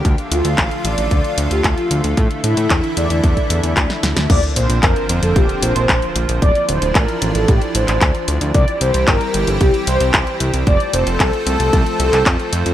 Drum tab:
CC |----------------|----------------|x---------------|----------------|
HH |xxxxxxxxxxxxxxxx|xxxxxxxxxxxxxxxx|xxxxxxxxxxxxxxxx|xxxxxxxxxxxxxxxx|
CP |----x-------x---|----x-------x---|----x-------x---|----x------xx---|
SD |----------------|-------------ooo|----------------|----------------|
BD |o---o---o---o---|o---o---oo--o---|o---o---o---o---|o---o---o---o---|

CC |----------------|----------------|
HH |xxxxxxxxxxxxxxxx|xxxxxxxxxxxxxxxx|
CP |----x-------x---|----x------xx---|
SD |----------------|----------------|
BD |o---o---o---o---|o---o---o---o---|